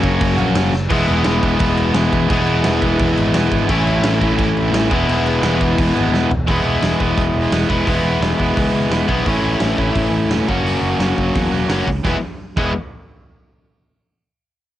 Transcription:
Already playing: F#3 A#3 C#4 F#4
0.03 F#1, kick, crash
0.21 F#1, kick, crash
0.37 A#1 F#3 A#3 C#4 F#4, crash
0.55 F#1, snare, crash
0.72 F#1, snare
0.89 E1 E3 G#3 B3 E4, kick, crash
1.08 E1, crash
1.24 E1, snare, crash
1.42 E1 E3 G#3 B3 E4, kick, crash
1.59 E1, kick, crash
1.77 crash
1.94 E1 E3 G#3 B3 E4, snare, crash
2.12 E1, kick, crash
2.29 E1 E3 G#3 B3 E4, kick, crash
2.47 crash
2.64 E1, snare, crash
2.81 E1 E3 G#3 B3 E4, kick, crash
2.99 E1, kick, crash
3.17 G#1, crash
3.34 E1 E3 G#3 B3 E4, snare, crash
3.51 G#1, kick, crash
3.69 A1 A2 E3 A3 C#4 E4, kick, crash
3.86 A1, crash
4.03 A1, snare, crash
4.20 A1 E3 A3 C#4 E4, kick, crash
4.24 A2
4.39 A1, kick, crash
4.57 crash
4.72 A1 A2 E3 A3 C#4 E4, snare, crash
4.88 E1 E3 G#3 B3 E4, kick, crash
5.07 E1, crash
5.26 crash
5.41 E1 E3 G#3 B3 E4, snare, crash
5.61 E1, kick, crash
5.78 E1, kick, crash
5.94 G#1 E3 G#3 B3 E4, crash
6.12 E1, snare
6.29 E1, floor tom
6.47 E1 E3 G#3 B3 E4, kick, open hi-hat
6.64 E1
6.82 E1, snare, open hi-hat
6.99 E1 E3 G#3 B3 E4, kick
7.17 E1, kick, open hi-hat
7.34 E1
7.51 E1 E3 G#3 B3 E4, snare, open hi-hat
7.69 E1 E3 G#3 B3 E4, kick
7.86 E1 E3 G#3 B3 E4, kick, open hi-hat
8.03 E1
8.21 E1, snare, open hi-hat
8.38 E1 E3 G#3 B3 E4, kick
8.57 C#2, kick, open hi-hat
8.73 C#2
8.90 E1 E3 G#3 B3 E4, snare, open hi-hat
9.08 B1 E3 G#3 B3 E4, kick
9.25 A1 A2 E3 A3 C#4 E4, kick, open hi-hat
9.42 A1
9.60 A1, snare, open hi-hat
9.78 A1 A2 E3 A3 C#4 E4, kick
9.95 A1, kick, open hi-hat
10.11 A1
10.29 E1 A2 E3 A3 C#4, snare, open hi-hat
10.33 E4
10.47 F#1 F#3 A#3 C#4 F#4, kick
10.63 F#1, open hi-hat
10.81 F#1
10.99 F#1 F#3 A#3 C#4 F#4, snare, open hi-hat
11.17 F#1, kick
11.35 E2, kick, open hi-hat
11.52 E1 F#3 A#3 C#4 F#4
11.69 F#1 F#3 A#3 C#4 F#4, snare, open hi-hat
11.87 C#2, kick
12.04 E1 E3 G#3 B3 E4, kick, snare
12.57 E1 E3 G#3 B3 E4, kick, crash

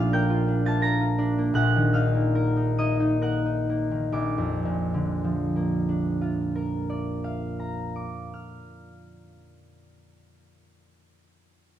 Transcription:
Already playing: A#1 A#2 F3 D4 F4 D5 D6 F6
0.00 F5
0.13 A#4 G5 G6
0.30 F4
0.48 D4
0.66 F4 A5 A6
0.81 A#4 A#5 A#6
1.01 F4
1.18 D4
1.38 A#3
1.54 A#1 A#2 F#5 F#6
1.76 D#3
1.93 D#4 F5 F6
2.14 A#3
2.35 A#4
2.56 D#4
2.78 A#3 D#5 D#6
3.00 D#4
3.22 A#4 F#5 F#6
3.46 D#4
3.69 A#3
3.91 D#3
4.12 A#1 D6
4.38 F2
4.65 A#2
4.94 D3
5.24 F3
5.56 A#3
5.89 D4
6.21 F4
6.55 A#4
6.90 D5
7.24 F5
7.59 A#5
7.96 D6
8.34 F6

